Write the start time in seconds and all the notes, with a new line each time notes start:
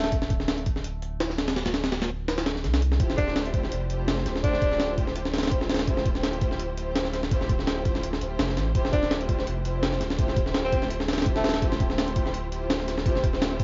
Already playing: D1 A3
0.04 snare, closed hi-hat
0.12 kick, closed hi-hat
0.22 D1, snare
0.30 kick, closed hi-hat
0.40 snare
0.48 snare, closed hi-hat
0.58 closed hi-hat
0.66 kick, closed hi-hat
0.76 snare
0.84 closed hi-hat
1.02 closed hi-hat
1.20 snare, closed hi-hat
1.30 snare
1.38 snare, closed hi-hat
1.48 snare, closed hi-hat
1.56 snare, closed hi-hat
1.66 D1, snare, closed hi-hat
1.74 snare, closed hi-hat
1.84 snare, closed hi-hat
1.92 snare, closed hi-hat
2.02 snare, closed hi-hat
2.28 snare, closed hi-hat
2.38 snare, closed hi-hat
2.46 snare, closed hi-hat
2.56 snare
2.64 C2, snare, closed hi-hat
2.74 snare, closed hi-hat
2.82 closed hi-hat
2.92 snare
3.00 D1 A3 E4 F4 G4 C5, kick, closed hi-hat
3.10 snare
3.17 D4, kick, closed hi-hat
3.28 A3 E4 F4 G4 C5, snare
3.36 snare, closed hi-hat
3.46 closed hi-hat
3.54 kick, closed hi-hat
3.64 snare
3.72 F1, closed hi-hat
3.90 A3 E4 F4 G4 C5, closed hi-hat
4.08 snare, closed hi-hat
4.18 snare
4.25 D1, snare, closed hi-hat
4.35 snare
4.43 A3 D4 E4 F4 G4 C5, kick, closed hi-hat
4.53 D1, snare
4.62 kick, closed hi-hat
4.71 A3 E4 F4 G4 C5, snare
4.80 snare, closed hi-hat
4.98 kick, closed hi-hat
5.07 snare
5.16 closed hi-hat
5.25 snare
5.33 A3 E4 F4 G4 C5, snare, closed hi-hat
5.38 snare, closed hi-hat
5.43 snare, closed hi-hat
5.47 snare, closed hi-hat
5.51 kick, closed hi-hat
5.61 snare
5.69 snare, closed hi-hat
5.74 snare, closed hi-hat
5.79 snare, closed hi-hat
5.87 A3 E4 F4 G4 C5, kick, closed hi-hat
5.97 D1, snare
6.05 kick, closed hi-hat
6.15 A3 E4 F4 G4 C5, snare
6.23 snare, closed hi-hat
6.33 closed hi-hat
6.41 kick, closed hi-hat
6.51 snare
6.59 closed hi-hat
6.77 A3 E4 F4 G4 C5, closed hi-hat
6.95 snare, closed hi-hat
7.05 snare
7.13 snare, closed hi-hat
7.23 snare
7.31 A3 E4 F4 G4 C5, kick, closed hi-hat
7.41 D1, snare
7.49 kick, closed hi-hat
7.59 A3 E4 F4 G4 C5, snare
7.67 snare, closed hi-hat
7.85 kick, closed hi-hat
7.95 snare
8.03 closed hi-hat
8.13 snare
8.21 D1 A3 E4 F4 G4 C5, closed hi-hat
8.39 F1, snare, closed hi-hat
8.49 snare
8.57 A1, snare, closed hi-hat
8.75 D1 A3 E4 F4 G4 C5, kick, closed hi-hat
8.85 snare
8.93 D4, kick, closed hi-hat
9.03 A3 E4 F4 G4 C5, snare
9.11 snare, closed hi-hat
9.21 closed hi-hat
9.29 kick, closed hi-hat
9.39 snare
9.47 F1, closed hi-hat
9.65 A3 E4 F4 G4 C5, closed hi-hat
9.83 snare, closed hi-hat
9.93 snare
10.01 D1, snare, closed hi-hat
10.10 snare
10.19 A3 E4 F4 G4 C5, kick, closed hi-hat
10.28 D1, snare
10.37 kick, closed hi-hat
10.46 A3 E4 F4 G4 C5, snare
10.54 snare, closed hi-hat
10.64 C4
10.73 kick, closed hi-hat
10.82 snare
10.90 closed hi-hat
11.00 snare
11.08 A3 E4 F4 G4 C5, snare, closed hi-hat
11.13 snare, closed hi-hat
11.18 snare, closed hi-hat
11.22 snare, closed hi-hat
11.26 kick, closed hi-hat
11.36 A3, snare
11.44 snare, closed hi-hat
11.49 snare, closed hi-hat
11.54 snare, closed hi-hat
11.62 A3 E4 F4 G4 C5, kick, closed hi-hat
11.72 D1, snare
11.80 kick, closed hi-hat
11.90 A3 E4 F4 G4 C5, snare
11.98 snare, closed hi-hat
12.08 closed hi-hat
12.16 kick, closed hi-hat
12.26 snare
12.34 closed hi-hat
12.52 A3 E4 F4 G4 C5, closed hi-hat
12.70 snare, closed hi-hat
12.80 snare
12.88 snare, closed hi-hat
12.98 snare
13.06 A3 E4 F4 G4 C5, kick, closed hi-hat
13.15 D1, snare
13.24 kick, closed hi-hat
13.33 A3 E4 F4 G4 C5, snare
13.42 snare, closed hi-hat
13.60 kick, closed hi-hat